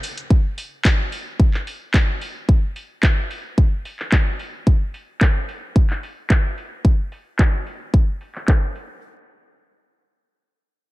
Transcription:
0.03 open hi-hat medium
0.03 shaker medium
0.17 closed hi-hat medium
0.17 shaker soft
0.30 kick loud
0.58 open hi-hat loud
0.85 kick loud
0.85 clap loud
1.12 open hi-hat loud
1.40 kick loud
1.54 clap soft
1.67 open hi-hat loud
1.94 kick loud
1.94 clap loud
2.21 open hi-hat medium
2.49 kick loud
2.76 open hi-hat medium
3.03 kick loud
3.03 clap loud
3.31 open hi-hat medium
3.58 kick loud
3.85 open hi-hat medium
3.99 clap soft
4.12 kick loud
4.12 clap loud
4.39 open hi-hat medium
4.67 kick loud
4.94 open hi-hat medium
5.21 kick loud
5.21 clap loud
5.49 open hi-hat medium
5.76 kick loud
5.90 clap soft
6.03 open hi-hat loud
6.30 kick loud
6.30 clap loud
6.58 open hi-hat medium
6.85 kick loud
7.12 open hi-hat medium
7.39 kick loud
7.39 clap loud
7.67 open hi-hat medium
7.94 kick loud
8.21 open hi-hat medium
8.35 clap soft
8.48 kick loud
8.48 clap loud
8.75 open hi-hat medium

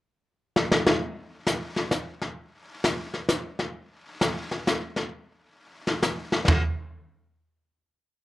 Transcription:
0.56 snare medium
0.72 snare medium
0.87 snare medium
1.01 brush sweep soft
1.47 snare medium
1.47 hi-hat pedal medium
1.76 snare soft
1.91 snare medium
1.91 hi-hat pedal medium
2.21 snare soft
2.38 brush sweep soft
2.84 snare medium
2.84 hi-hat pedal medium
3.14 snare soft
3.29 snare medium
3.29 hi-hat pedal medium
3.59 snare soft
3.76 brush sweep medium
4.21 snare medium
4.21 hi-hat pedal soft
4.51 snare soft
4.67 snare medium
4.67 hi-hat pedal soft
4.96 snare soft
5.12 brush sweep soft
5.87 snare soft
6.03 snare medium
6.03 hi-hat pedal medium
6.32 snare soft
6.48 snare medium
6.48 floor tom medium
6.48 ride bell medium

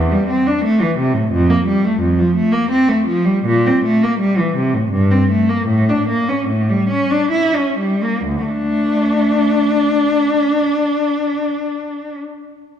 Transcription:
0.00 0.12 E2 medium
0.12 0.29 G3 medium
0.30 0.47 C4 medium
0.47 0.64 D4 medium
0.65 0.81 A3 medium
0.81 0.98 E3 medium
0.98 1.15 C3 medium
1.14 1.32 A2 medium
1.32 1.49 F2 medium
1.50 1.67 A#3 medium
1.67 1.84 G3 medium
1.85 2.02 A3 medium
2.00 2.18 F2 medium
2.19 2.37 F3 medium
2.36 2.54 A3 medium
2.52 2.71 A#3 medium
2.71 2.89 C4 medium
2.88 3.07 A3 medium
3.07 3.26 F3 medium
3.25 3.45 G3 medium
3.46 3.64 A#2 medium
3.66 3.84 C4 medium
3.84 4.02 A3 medium
4.03 4.20 A#3 medium
4.20 4.38 G3 medium
4.38 4.56 E3 medium
4.56 4.74 C3 medium
4.74 4.93 A2 medium
4.92 5.11 G2 medium
5.11 5.30 C4 medium
5.31 5.49 A3 medium
5.49 5.68 A#3 medium
5.67 5.87 A2 medium
5.89 6.08 D4 medium
6.09 6.28 A#3 medium
6.29 6.48 C#4 medium
6.48 6.68 A2 medium
6.70 6.90 G3 medium
6.90 7.10 C#4 medium
7.10 7.32 D4 medium
7.32 7.55 E4 medium
7.56 7.80 C#4 medium
7.79 8.03 G3 medium
8.03 8.26 A#3 medium
8.25 8.46 D2 medium
8.45 10.21 A3 medium
8.45 12.14 D4 medium

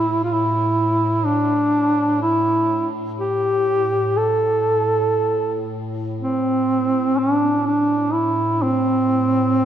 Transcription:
0.00 6.20 A2 soft
0.00 0.21 E4 medium
0.24 0.33 F4 medium
0.32 1.27 E4 medium
1.25 2.21 D4 medium
2.22 2.88 E4 medium
3.19 4.18 G4 medium
4.17 5.71 A4 medium
6.21 9.65 A2 medium
6.21 7.20 C4 medium
7.18 7.65 D4 medium
7.66 8.15 D4 medium
8.13 8.64 E4 medium
8.62 9.65 C4 medium

